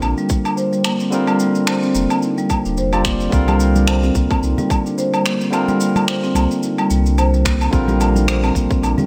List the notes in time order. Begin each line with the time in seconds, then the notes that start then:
Already playing: D3 G3 C4 F4 A#4
0.02 A#1 D4, low woodblock, shaker
0.18 G3, shaker
0.29 A#3, kick, shaker
0.45 D4, low woodblock, shaker
0.57 C5, shaker
0.73 G3, shaker
0.84 A#3, finger snap, low woodblock, shaker
1.00 C4, shaker
1.10 D3 G3 C4 F4, shaker
1.14 A#4
1.27 G3, low woodblock, shaker
1.39 A#3, shaker
1.55 D4, shaker
1.67 C5, finger snap, low woodblock, shaker
1.83 C4, shaker
1.95 F1 A#3, shaker
2.10 C4, low woodblock, shaker
2.22 D#4, shaker
2.38 G3, shaker
2.50 A#3, kick, low woodblock, shaker
2.65 D#1 D4, shaker
2.77 F1 C5, shaker
2.92 G3 C4 F4 D5, low woodblock, shaker
3.05 A#3, finger snap, kick, shaker
3.20 C4, shaker
3.30 C2 D3 G3 C4 F4 A#4, kick, shaker
3.47 G3, high bongo, high conga, low woodblock, shaker
3.60 A#3, shaker
3.76 D4, high conga, shaker
3.88 C5, finger snap, low woodblock, shaker
4.03 C4, high bongo, shaker
4.15 C2 A#3, kick, high conga, shaker
4.31 C4, kick, low woodblock, shaker
4.43 C2 D#4, shaker
4.58 G3, high bongo, low conga, shaker
4.70 kick, low woodblock, shaker
4.86 D4, shaker
4.98 C5, shaker
5.13 G3, low woodblock, shaker
5.26 A#3, finger snap, shaker
5.41 C4, shaker
5.50 D3 G3 C4 F4, low woodblock, shaker
5.55 A#4
5.68 G3, high bongo, high conga, shaker
5.80 A#3, shaker
5.96 D4, high conga, low woodblock, shaker
6.08 C5, finger snap, shaker
6.23 C4, high bongo, shaker
6.35 C2 A#3, high conga, low woodblock, shaker
6.51 C4, shaker
6.63 D#4, shaker
6.78 G3, low woodblock, shaker
6.90 C2 A#3, shaker
7.06 D4, shaker
7.18 C5, low woodblock, shaker
7.34 G3, shaker
7.45 A#3, finger snap, kick, shaker
7.61 C4, low woodblock, shaker
7.70 A#1 D3 G3 C4 F4, kick, shaker
7.74 A#4
7.88 G3, high bongo, high conga, shaker
8.00 A#3, low woodblock, shaker
8.15 D4, high conga, shaker
8.27 C5, finger snap, shaker
8.43 C4, high bongo, low woodblock, shaker
8.55 A#1 A#3, kick, high conga, shaker
8.70 C4, kick, shaker
8.82 A#1 D4, low woodblock, shaker
8.98 G3, high bongo, low conga, shaker